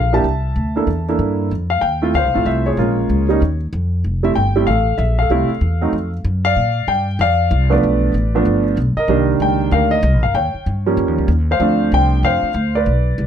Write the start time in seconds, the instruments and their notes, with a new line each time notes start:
Already playing: upright bass A#1, grand piano A#4 F5
0.13 grand piano A#3 D4 E4 G4 E5 A5
0.24 upright bass C2
0.56 upright bass D2
0.76 grand piano A#3 D4 E4 A4
0.87 upright bass E2
1.09 grand piano A#3 D4 E4 A4
1.19 upright bass G2
1.51 upright bass F2
1.70 grand piano F5
1.81 upright bass D#2, grand piano G5
2.02 grand piano A3 C4 E4 F4
2.14 upright bass D2, grand piano C5 F5
2.24 upright bass C2
2.34 upright bass A1, grand piano A3 C4 E4 F4
2.46 upright bass C2, grand piano E5
2.66 grand piano G#4 C#5
2.77 upright bass A#1, grand piano G#3 A#3 C#4 F4
3.10 upright bass C#2
3.29 grand piano G3 A#3 C#4 D#4
3.42 upright bass D#2
3.73 upright bass F2
4.04 upright bass F1
4.23 grand piano G3 A3 C4 E4 E5
4.35 upright bass G1, grand piano G5
4.56 grand piano G3 A3 C4 E4
4.67 upright bass A1, grand piano A4 F5
4.98 upright bass A#1, grand piano E5
5.19 grand piano A4 F5
5.30 upright bass C2, grand piano G3 A3 C4 E4
5.49 muted upright bass stroke
5.61 upright bass E2
5.81 grand piano F#3 A3 C4 D#4
5.93 upright bass F2
6.24 upright bass F#2
6.45 grand piano D5 F5
6.56 upright bass A#2
6.87 upright bass G2, grand piano G5
7.19 upright bass F2, grand piano D5 F5
7.51 upright bass C2
7.70 grand piano F3 A3 B3 D4 D5
7.74 grand piano B4
7.83 upright bass B1
8.14 upright bass A1
8.35 grand piano F3 A3 B3 D4
8.45 upright bass G1
8.77 upright bass B1
8.96 grand piano A#4 D#5, muted upright bass stroke
9.08 upright bass C2, grand piano D#3 G3 A#3 D4
9.40 upright bass C#2, grand piano G5
9.71 upright bass D2, grand piano A#4 F5
9.91 grand piano D#5
10.03 upright bass C2
10.13 upright bass A#1
10.23 upright bass G1, grand piano F5
10.34 upright bass D#2, grand piano C#5 G5
10.54 muted upright bass stroke
10.66 upright bass G2
10.86 grand piano F3 G3 A#3 C#4
10.97 upright bass F2
11.08 upright bass D#2
11.18 upright bass C#2
11.28 upright bass D#2
11.51 grand piano C5 F5
11.60 upright bass D2, grand piano F3 A3 C4 D4
11.92 upright bass C2, grand piano G5
12.23 upright bass F2, grand piano C5 F5
12.43 muted upright bass stroke
12.54 upright bass D2
12.75 grand piano B4 D5
12.86 upright bass B1
13.18 upright bass C2